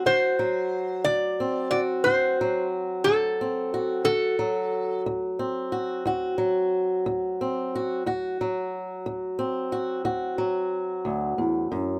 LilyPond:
<<
  \new Staff \with { instrumentName = "Resonator guitar played with a steel bar" } { \time 12/8 \key d \mixolydian \tempo 4. = 60 c''4. d''4 d''8 c''4 r8 a'4. | a'4. r1 r8 | r1. | }
  \new Staff \with { instrumentName = "Steel-string acoustic guitar" } { \clef bass \time 12/8 \key d \mixolydian << { <fis fis'>8 fis4. c'8 fis'8 fis'8 fis4. c'8 fis'8 | fis'8 fis4. c'8 fis'8 fis'8 fis4. c'8 fis'8 | fis'8 fis4. c'8 fis'8 fis'8 fis2~ fis8 | } \\ { d,4 r8 d,4 r8 d,4 r8 d,4 r8 | d,4 r8 d,4 r8 d,4 r8 d,4 r8 | d,4 r8 d,4 r8 d,4 r8 d,8 e,8 fis,8 | } >> }
>>